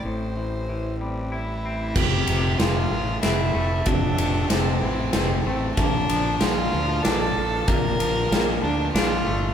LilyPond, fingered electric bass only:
\new Staff \with { instrumentName = "Fingered electric bass" } { \clef bass \time 3/4 \key f \major \tempo 4 = 94 a,,2. | f,,8 f,,8 f,,8 a,,8 f,,8 f,,8 | f,,8 f,,8 f,,8 a,,8 f,,8 a,,8 | bes,,8 bes,,8 bes,,8 d,8 bes,,8 bes,,8 |
bes,,8 bes,,8 bes,,8 d,8 bes,,8 g,,8 | }